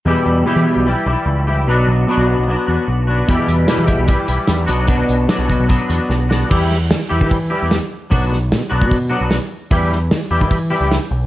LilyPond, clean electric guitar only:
\new Staff \with { instrumentName = "Clean electric guitar" } { \time 4/4 \key e \minor \tempo 4 = 149 <e, b, e g e' g'>4 <e, b, e g e' g'>8 <e g e' g'>8 <e g e' g'>8 <e g e' g'>4 <e g e' g'>8 | <b, fis b d' fis'>4 <b, fis b d' fis'>8 <b d' fis'>8 <fis b d' fis'>8 <b d' fis'>4 <b d' fis'>8 | <e, b, e g e' g'>4 <e, b, e g e' g'>8 <e g e' g'>8 <e g e' g'>8 <e g e' g'>4 <b, fis b d' fis'>8 | <b, fis b d' fis'>4 <b, fis b d' fis'>8 <b d' fis'>8 <fis b d' fis'>8 <b d' fis'>4 <b d' fis'>8 |
<e g e' g'>8 r4 <e g e' g'>8 r8 <e g e' g'>8 r4 | <fis b d' fis'>8 r4 <fis b d' fis'>8 r8 <fis b d' fis'>8 r4 | <e g e' g'>8 r4 <e g e' g'>8 r8 <e g e' g'>8 r4 | }